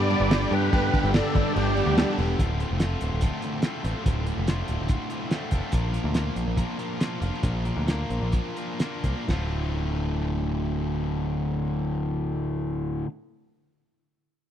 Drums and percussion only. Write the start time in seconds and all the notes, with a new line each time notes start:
0.10 crash
0.31 snare, crash
0.42 snare
0.52 crash
0.73 kick, crash
0.94 kick, crash
1.04 snare
1.14 snare, crash
1.35 kick, crash
1.56 crash
1.77 crash
1.97 snare, crash
2.09 snare
2.19 crash
2.39 kick, closed hi-hat
2.60 closed hi-hat
2.80 snare, closed hi-hat
3.01 closed hi-hat
3.21 kick, closed hi-hat
3.42 closed hi-hat
3.62 snare, closed hi-hat
3.85 closed hi-hat
4.06 kick, closed hi-hat
4.27 closed hi-hat
4.47 snare, closed hi-hat
4.68 closed hi-hat
4.88 kick, closed hi-hat
5.10 closed hi-hat
5.31 snare, closed hi-hat
5.51 kick, closed hi-hat
5.72 kick, closed hi-hat
5.94 closed hi-hat
6.14 snare, closed hi-hat
6.36 closed hi-hat
6.57 kick, closed hi-hat
6.79 closed hi-hat
7.01 snare, closed hi-hat
7.22 closed hi-hat
7.34 snare
7.43 kick, closed hi-hat
7.65 closed hi-hat
7.88 snare, closed hi-hat
8.10 closed hi-hat
8.32 kick, closed hi-hat
8.57 closed hi-hat
8.80 snare, closed hi-hat
9.04 kick, closed hi-hat
9.28 kick, snare, crash